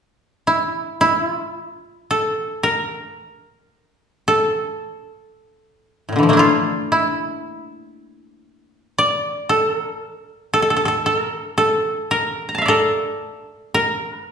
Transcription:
koto
0.47 E4
1.01 E4
1.26 F4
2.11 A4
2.63 A#4
4.28 A4
6.09 A2 A#2
6.16 D3 E3
6.23 F3
6.29 A3 A#3
6.33 D4 E4
6.39 F4
6.92 E4
8.98 D5
9.49 A4
9.74 A#4
10.54 A4
10.62 A4
10.70 A4
10.77 A4
10.85 A4
11.06 A4
11.18 A#4
11.58 A4
12.11 A#4
12.49 A#5
12.55 F5 A5
12.62 D5 E5
12.68 A4 A#4
13.74 A#4

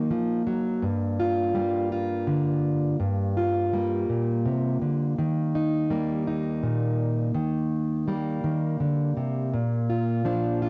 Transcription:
steel-string acoustic guitar
Already playing: D#3 A#3 D#4 A#4
0.10 F3
0.47 F#3
0.82 G2
1.20 F4
1.55 G3 A#3
1.92 F4
2.27 D3
3.00 G2
3.37 F4
3.73 G3 A#3
4.09 A#2
4.45 C3
4.82 D3
5.18 D#3
5.55 D#4
5.90 G3 A#3
6.27 D#4
6.63 A#2
7.35 D#3
8.08 G3 A#3
8.44 D#3
8.80 D3
9.17 C3
9.54 A#2
9.90 F4
10.25 F3 D4
10.62 F4

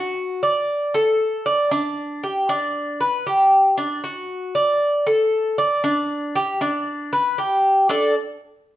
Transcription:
cuban tres
Already playing: F#4
0.43 D5
0.94 A4
1.46 D5
1.71 D4
2.23 G4
2.49 D4
3.01 B4
3.27 G4
3.78 D4
4.04 F#4
4.55 D5
5.07 A4
5.58 D5
5.84 D4
6.36 G4
6.61 D4
7.13 B4
7.38 G4
7.89 D4 A4 D5

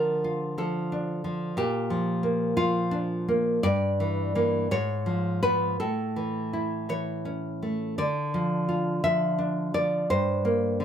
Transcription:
nylon-string guitar
Already playing: D3 F3 A#4
0.24 F4
0.58 F3 A4
0.92 D4
1.24 F3
1.57 A#2 G4
1.90 F3
2.23 A#3
2.57 F3 F4
2.91 D4
3.28 A#3
3.63 G2 D5
4.00 E3
4.35 E3 A#3
4.71 G#2 C#5
5.06 F3
5.43 F3 B3 B4
5.80 A2 A4
6.16 E3
6.53 E4
6.89 E3 C#5
7.25 C#4
7.63 A3
7.98 D3 D5
8.34 F3
8.69 F4
9.04 F3 E5
9.38 D4
9.74 F3 D5
10.10 G2 C5
10.45 A#3
10.80 D3

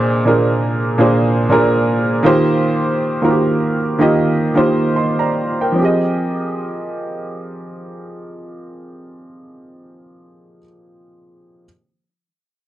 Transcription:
upright piano
Already playing: A#2 A#3 D4 G#4 C5 D#5 C6
0.25 A#2 A#3 D4 G#4 A#4
0.98 A#2 A#3 D4 G#4 C5
1.49 A#2 A#3 D4 G#4 A#4
2.23 D#3 A#3 F4 G4 C5
3.22 D#3 A#3 F4 F#4 A#4
3.30 G4
3.99 D#3 A#3 F4 G4 D#5
4.54 D#3 A#3 F4 G4 C5
4.96 D#5 C6
5.19 D5 A#5
5.61 A#4 G5
5.72 F3 C4
5.78 G4 G#4
5.85 D#5

